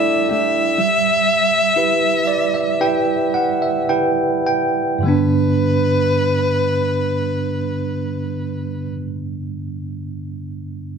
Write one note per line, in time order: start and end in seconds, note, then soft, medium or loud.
0.00 0.74 G3 medium
0.00 0.29 A3 medium
0.00 0.29 D4 medium
0.00 0.29 E4 medium
0.00 0.79 E4 medium
0.00 0.28 G4 medium
0.00 0.80 A4 soft
0.00 0.80 D5 medium
0.00 0.30 E5 loud
0.29 0.79 A3 soft
0.29 0.78 D4 soft
0.29 0.78 E4 soft
0.29 0.77 G4 medium
0.29 3.86 E5 loud
0.78 5.00 G3 medium
1.76 2.77 E4 soft
1.76 2.77 G4 soft
1.76 2.77 B4 medium
2.27 2.52 D5 medium
2.54 2.79 E5 medium
2.81 3.86 E4 medium
2.81 3.86 G4 soft
2.81 3.86 B4 medium
2.81 3.30 G5 medium
3.34 3.59 F#5 medium
3.62 3.87 E5 medium
3.89 5.00 E4 soft
3.89 5.00 G4 soft
3.89 5.01 B4 medium
3.89 4.42 G5 medium
4.46 5.00 G5 medium
4.99 8.84 G2 medium
4.99 8.86 D3 medium
5.03 8.88 G3 soft
5.03 8.92 B3 soft
5.03 8.89 B4 loud
5.08 8.94 D4 medium